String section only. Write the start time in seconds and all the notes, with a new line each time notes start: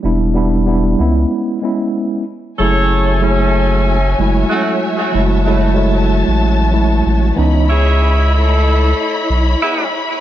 2.59 F#4 C#5 E5 G#5
5.14 A5
7.38 E4 C#5 D#5 B5
9.94 E5